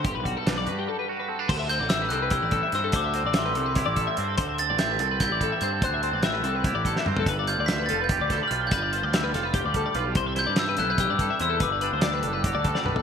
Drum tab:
CC |--------------|x-------------|--------------|--------------|
HH |x-x-x-x-------|--x-x-x-x-x-x-|x-x-x-x-x-x-x-|x-x-x-x-x-x-x-|
SD |----o---------|----o-------o-|----o---o-----|----o---o-----|
T2 |--------------|--------------|--------------|--------------|
FT |--------------|--------------|--------------|--------------|
BD |o-o-----------|o-------o-o---|o-------o-o---|o-------o-o---|

CC |--------------|--------------|--------------|--------------|
HH |x-x-x-x-x-x---|x-x-x-x-x-x-x-|x-x-x-x-x-x-x-|x-x-x-x-x-x-x-|
SD |----o------o--|----o-----o---|----o-o-------|--o-o-o-------|
T2 |------------o-|--------------|--------------|--------------|
FT |-------------o|--------------|--------------|--------------|
BD |o-------o-o---|o-------o-o---|o-------o-o---|o-------o-o---|

CC |--------------|
HH |x-x-x-x-x-x---|
SD |----o------o--|
T2 |------------o-|
FT |-------------o|
BD |o-------o-o---|